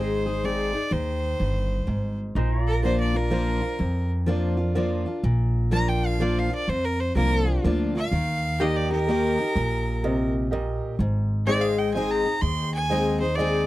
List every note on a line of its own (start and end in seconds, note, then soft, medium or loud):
0.00 0.72 G#1 medium
0.00 0.41 G#2 medium
0.00 0.25 G#3 medium
0.00 0.25 C4 medium
0.00 0.25 D#4 medium
0.00 2.33 D#4 medium
0.00 0.25 G#4 medium
0.00 2.34 G#4 medium
0.00 0.46 C5 medium
0.00 2.34 C5 medium
0.26 0.43 D#4 medium
0.26 0.43 G#4 medium
0.44 0.73 G#3 medium
0.44 0.73 C4 medium
0.44 0.73 D#4 medium
0.44 0.72 G#4 medium
0.44 0.94 D5 medium
0.73 0.91 D#4 soft
0.73 0.91 G#4 medium
0.91 1.33 D#2 medium
0.91 1.84 D#3 medium
0.91 2.19 C5 medium
1.39 1.81 G1 medium
1.39 1.86 G2 medium
1.87 2.29 G#1 medium
1.87 2.34 G#2 medium
2.35 3.60 A#1 medium
2.35 3.28 A#2 medium
2.35 2.61 D#4 medium
2.35 8.09 A#4 medium
2.35 2.63 C5 medium
2.61 8.08 F4 medium
2.61 8.09 D5 medium
2.67 2.83 A#4 medium
2.83 3.13 F3 medium
2.83 3.13 A#3 medium
2.83 3.14 D4 medium
2.83 3.25 F4 medium
2.83 3.13 F4 medium
2.83 3.25 A#4 medium
2.83 3.00 C5 medium
2.83 3.26 D5 medium
3.00 3.18 D5 medium
3.14 3.30 D4 soft
3.14 3.31 F4 medium
3.14 4.09 A#4 medium
3.30 3.60 F3 medium
3.30 3.61 A#3 medium
3.30 3.61 D4 medium
3.30 3.73 F4 medium
3.30 3.60 F4 loud
3.30 3.74 A#4 medium
3.30 3.74 C5 medium
3.61 3.80 D4 medium
3.61 3.79 F4 medium
3.79 4.72 F2 medium
3.79 5.04 F2 medium
4.26 4.56 F3 medium
4.26 4.57 A#3 medium
4.26 4.57 D4 loud
4.26 4.69 F4 medium
4.26 4.56 F4 medium
4.26 4.70 A#4 medium
4.26 4.70 D5 medium
4.57 4.75 D4 soft
4.57 4.75 F4 medium
4.75 5.05 F3 medium
4.75 5.05 A#3 medium
4.75 5.05 D4 medium
4.75 5.17 F4 medium
4.75 5.05 F4 medium
4.75 5.18 A#4 medium
4.75 5.18 D5 medium
5.06 5.24 D4 soft
5.06 5.23 F4 medium
5.23 6.48 A#1 medium
5.23 6.16 A#2 medium
5.71 6.18 F3 medium
5.71 6.18 A#3 medium
5.71 6.18 D4 medium
5.71 6.14 F4 medium
5.71 6.18 F4 loud
5.71 6.14 A#4 medium
5.71 6.14 D5 medium
5.71 5.90 A#5 loud
5.88 6.08 G5 medium
6.06 6.24 F5 medium
6.20 6.49 F3 medium
6.20 6.49 A#3 medium
6.20 6.49 D4 medium
6.20 6.62 F4 medium
6.20 6.49 F4 loud
6.20 6.62 A#4 medium
6.20 6.62 C5 medium
6.20 6.40 D5 medium
6.39 6.53 F5 medium
6.50 6.68 D4 soft
6.50 6.67 F4 medium
6.55 6.71 D5 medium
6.68 7.09 F2 medium
6.68 7.61 F2 medium
6.68 6.86 C5 medium
6.85 7.01 A#4 medium
7.00 7.15 C5 medium
7.15 7.56 C2 medium
7.15 7.45 F3 medium
7.15 7.45 A#3 medium
7.15 7.45 D4 medium
7.15 7.58 F4 medium
7.15 7.44 F4 medium
7.15 7.58 A#4 medium
7.15 7.63 A#4 loud
7.15 7.58 F5 medium
7.46 7.64 D4 medium
7.46 7.63 F4 medium
7.63 8.05 D2 medium
7.63 7.93 F3 medium
7.63 7.93 A#3 medium
7.63 7.94 D4 loud
7.63 8.05 F4 medium
7.63 7.94 F4 loud
7.63 8.06 A#4 medium
7.63 8.06 D5 medium
7.95 8.12 D4 soft
7.95 8.11 F4 medium
7.95 8.63 F5 medium
8.11 9.35 D#2 medium
8.11 8.59 D#3 medium
8.60 8.89 D#3 medium
8.60 8.89 A#3 medium
8.60 8.89 D#4 loud
8.60 9.02 G4 medium
8.60 10.97 G4 medium
8.60 8.90 G4 loud
8.60 9.02 A#4 medium
8.60 10.98 A#4 medium
8.60 8.82 D5 medium
8.60 9.02 D#5 medium
8.60 8.78 D#5 medium
8.77 8.91 D5 loud
8.82 10.98 D#5 medium
8.91 9.08 D#4 medium
8.91 9.07 G4 medium
8.91 10.32 A#4 loud
9.07 9.37 D#3 medium
9.07 9.37 A#3 loud
9.07 9.38 D#4 medium
9.07 9.49 G4 medium
9.07 9.38 G4 medium
9.07 9.50 A#4 medium
9.07 9.50 D#5 medium
9.39 9.56 D#4 medium
9.39 9.55 G4 medium
9.56 10.79 A#1 medium
9.56 10.48 A#2 medium
10.03 10.50 C3 loud
10.03 10.45 G4 medium
10.03 10.46 A#4 medium
10.03 10.46 D#5 medium
10.51 10.98 A#2 medium
10.51 10.93 G4 medium
10.51 10.93 A#4 medium
10.51 10.93 D#5 medium
10.99 12.22 G#1 medium
10.99 11.92 G#2 medium
11.46 11.93 G#3 medium
11.46 11.93 C4 medium
11.46 11.94 D#4 loud
11.46 11.89 G#4 medium
11.46 13.67 G#4 medium
11.46 11.94 G#4 loud
11.46 11.89 C5 medium
11.46 13.67 C5 medium
11.46 11.63 D5 loud
11.46 11.89 D#5 medium
11.46 13.67 D#5 medium
11.62 11.80 F5 medium
11.78 11.93 G5 medium
11.94 12.24 G#3 medium
11.94 12.24 C4 medium
11.94 12.25 D#4 loud
11.94 12.36 G#4 medium
11.94 12.25 G#4 loud
11.94 12.36 C5 medium
11.94 12.37 D#5 medium
11.94 12.12 G#5 medium
12.11 12.43 A#5 medium
12.26 12.43 D#4 medium
12.26 12.42 G#4 medium
12.41 13.66 D#2 medium
12.41 13.35 D#3 medium
12.41 12.73 C6 loud
12.74 13.19 G#5 loud
12.89 13.19 G#3 loud
12.89 13.20 C4 loud
12.89 13.20 D#4 medium
12.89 13.31 G#4 medium
12.89 13.20 G#4 loud
12.89 13.32 C5 medium
12.89 13.32 D#5 medium
13.20 13.38 D#4 medium
13.20 13.37 G#4 medium
13.20 13.37 C5 medium
13.36 13.67 G#3 loud
13.36 13.67 C4 loud
13.36 13.67 D#4 loud
13.36 13.67 G#4 medium
13.36 13.67 C5 medium
13.36 13.67 D5 loud
13.36 13.67 D#5 loud
13.40 13.67 G#4 loud